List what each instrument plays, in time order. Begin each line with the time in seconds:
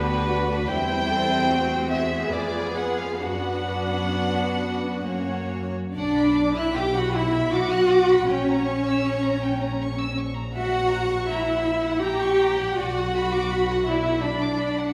Already playing: double bass section D2, viola section B3 D4, violin section F#4 B4, cello section G4
0.28 viola section A3, cello section F#4
0.69 double bass section E2, viola section G3 C4, violin section E4 C5 G5, cello section E4
1.11 cello section A4
1.47 viola section A3, violin section F#4, cello section G4
1.89 cello section G#4, violin section E5
2.30 double bass section F2, viola section B3 F4, violin section G#4 B4 D5
2.75 viola section F4, violin section F#5
2.99 violin section F5
3.21 double bass section F#2, viola section B3 D4, violin section F#4 B4 F#5, cello section F#4
5.06 double bass section F#2, viola section A#3 C#4, violin section F#4 C#5
5.95 double bass section B1, cello section D4, viola section D4, violin section D5 F#5
6.17 violin section B5
6.38 violin section D6
6.56 viola section E4, cello section E4, violin section E5 F#6
6.76 viola section G4, cello section G4, violin section G5 D6
6.95 viola section F#4, cello section F#4, violin section F#5 B5
7.14 viola section E4, cello section E4, violin section E5 F#5
7.34 violin section B5
7.52 viola section F#4, cello section F#4, violin section F#5 D6
7.73 violin section F#6
7.92 violin section D6
8.11 violin section B5
8.28 double bass section A#1, viola section C#4, cello section C#4, violin section C#5 G5
8.49 violin section A#5
8.67 violin section C#6
8.87 violin section E6
9.05 violin section C#6
9.25 violin section A#5
9.44 violin section G5
9.62 violin section A#5
9.82 violin section C#6
10.01 violin section E6
10.18 violin section C#6
10.37 violin section A#5
10.57 cello section F#4, viola section F#4, violin section E5 F#5
10.74 violin section F#5
10.91 violin section A#5
11.12 violin section C#6
11.31 viola section E4, cello section E4, violin section E5 A#5
11.49 violin section F#5
11.68 violin section E5
11.85 violin section F#5
12.02 cello section G4, viola section G4, violin section G5 A#5
12.21 violin section C#6
12.40 violin section A#5
12.58 violin section F#5
12.75 double bass section B1, viola section F#4, cello section F#4, violin section D5 F#5
12.96 violin section F#5
13.16 violin section B5
13.34 violin section D6
13.51 violin section B5
13.71 violin section F#5
13.87 viola section E4, cello section E4, violin section D5 E5
14.07 violin section F#5
14.23 viola section D4, cello section D4, violin section D5 B5
14.42 violin section D6
14.59 violin section B5
14.79 violin section F#5